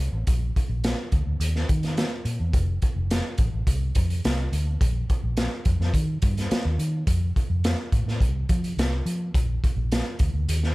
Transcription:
0.00 0.10 C2 medium
0.13 0.24 A1 medium
0.27 0.50 A#1 loud
0.27 kick medium
0.27 closed hi-hat medium
0.56 kick medium
0.56 closed hi-hat medium
0.69 0.93 A#1 medium
0.84 snare medium
0.84 closed hi-hat medium
1.12 1.24 D2 medium
1.12 kick medium
1.12 closed hi-hat medium
1.26 1.38 D2 medium
1.40 1.63 D#2 medium
1.40 closed hi-hat medium
1.56 snare soft
1.69 2.04 D#3 medium
1.69 kick medium
1.69 closed hi-hat medium
1.83 snare soft
1.83 closed hi-hat soft
1.97 snare loud
1.97 closed hi-hat medium
2.25 2.37 A#2 medium
2.25 closed hi-hat medium
2.40 2.51 E2 medium
2.53 2.77 F1 medium
2.53 kick medium
2.53 closed hi-hat medium
2.82 kick medium
2.82 closed hi-hat medium
2.96 3.19 F1 medium
3.10 snare medium
3.10 closed hi-hat medium
3.38 3.50 A1 medium
3.38 kick medium
3.38 closed hi-hat medium
3.54 3.65 A1 medium
3.67 3.90 C2 medium
3.67 kick medium
3.67 closed hi-hat medium
3.95 4.19 F2 medium
3.95 kick medium
3.95 closed hi-hat medium
4.10 closed hi-hat soft
4.24 4.47 C2 medium
4.24 snare loud
4.24 closed hi-hat medium
4.52 4.75 D2 medium
4.52 closed hi-hat medium
4.81 5.04 A#1 medium
4.81 kick loud
4.81 closed hi-hat medium
5.10 kick medium
5.10 closed hi-hat medium
5.24 5.47 A#1 medium
5.37 snare medium
5.37 closed hi-hat medium
5.65 5.77 F2 medium
5.65 kick medium
5.65 closed hi-hat medium
5.80 5.91 F2 medium
5.80 snare soft
5.94 6.17 D#3 medium
5.94 kick medium
5.94 closed hi-hat medium
6.22 6.46 G2 medium
6.22 kick medium
6.22 closed hi-hat medium
6.37 snare soft
6.37 closed hi-hat soft
6.51 muted fingered electric bass stroke soft
6.51 snare loud
6.51 closed hi-hat medium
6.65 6.77 D#2 medium
6.79 7.02 D#3 medium
6.79 closed hi-hat medium
7.07 7.30 F2 loud
7.07 kick loud
7.07 closed hi-hat medium
7.36 kick medium
7.36 closed hi-hat medium
7.50 7.73 F2 medium
7.64 snare medium
7.64 closed hi-hat medium
7.92 8.04 A2 medium
7.92 kick medium
7.92 closed hi-hat medium
8.06 8.23 A2 medium
8.06 snare soft
8.20 8.44 C2 medium
8.20 kick medium
8.20 closed hi-hat medium
8.49 8.73 F3 medium
8.49 kick medium
8.49 closed hi-hat medium
8.64 closed hi-hat soft
8.77 9.00 C2 medium
8.77 snare medium
8.77 closed hi-hat medium
9.06 9.29 F3 medium
9.06 closed hi-hat medium
9.34 9.58 A#1 medium
9.34 kick loud
9.34 closed hi-hat medium
9.64 kick medium
9.64 closed hi-hat medium
9.76 10.00 A#1 medium
9.92 snare medium
9.92 closed hi-hat medium
10.19 10.32 D2 medium
10.19 kick medium
10.19 closed hi-hat medium
10.34 10.46 D2 medium
10.48 10.71 D#2 medium
10.48 closed hi-hat medium
10.63 snare soft

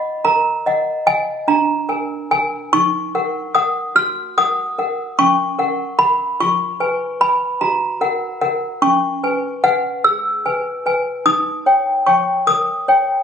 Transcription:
0.00 0.14 D#5 soft
0.00 0.15 F#5 soft
0.00 0.22 B5 medium
0.25 0.65 A#4 soft
0.25 1.04 A#5 medium
0.66 0.96 D#5 soft
0.66 0.96 F#5 soft
1.07 1.37 D#5 soft
1.07 1.37 F#5 soft
1.07 1.47 G#5 medium
1.48 1.88 D4 medium
1.48 2.28 A#5 medium
1.89 2.19 A#4 soft
1.89 2.20 G#5 soft
2.31 2.61 A#4 soft
2.31 2.72 G#5 medium
2.73 3.13 D#4 medium
2.73 3.52 C#6 medium
3.15 3.44 A#4 soft
3.15 3.44 F#5 soft
3.55 3.85 A#4 soft
3.55 3.85 F#5 soft
3.55 3.94 D#6 medium
3.95 4.36 F#4 soft
3.95 4.35 F6 medium
4.38 4.67 A#4 soft
4.38 4.67 F#5 soft
4.38 5.15 D#6 medium
4.79 5.07 A#4 soft
4.79 5.08 F#5 soft
5.19 5.58 C#4 medium
5.19 5.96 C#6 medium
5.59 5.88 A#4 soft
5.59 5.88 F#5 medium
5.99 6.28 A#4 soft
5.99 6.28 F#5 soft
5.99 6.38 B5 medium
6.40 6.79 F4 medium
6.40 7.18 C#6 medium
6.80 7.09 B4 soft
6.80 7.10 G#5 soft
7.21 7.50 B4 soft
7.21 7.50 G#5 medium
7.21 7.59 B5 medium
7.61 8.00 F#4 medium
7.61 8.00 A#5 medium
8.01 8.30 A#4 medium
8.01 8.30 F#5 medium
8.41 8.71 A#4 soft
8.41 8.71 F#5 medium
8.82 9.22 C#4 medium
8.82 9.61 C#6 medium
9.24 9.53 B4 soft
9.24 9.53 G#5 soft
9.64 9.94 B4 soft
9.64 10.03 F#5 loud
9.64 9.94 G#5 soft
10.04 10.44 G#4 medium
10.04 11.22 E6 medium
10.46 10.75 B4 medium
10.46 10.75 G#5 medium
10.86 11.15 B4 medium
10.86 11.15 G#5 medium
11.26 11.65 D#4 medium
11.26 12.03 D#6 medium
11.66 11.95 C#5 soft
11.66 11.96 G5 medium
12.06 12.36 C#5 soft
12.06 12.36 G5 soft
12.06 12.45 C#6 medium
12.47 12.86 A#4 medium
12.47 13.23 D#6 medium
12.88 13.17 C#5 soft
12.88 13.17 G5 soft

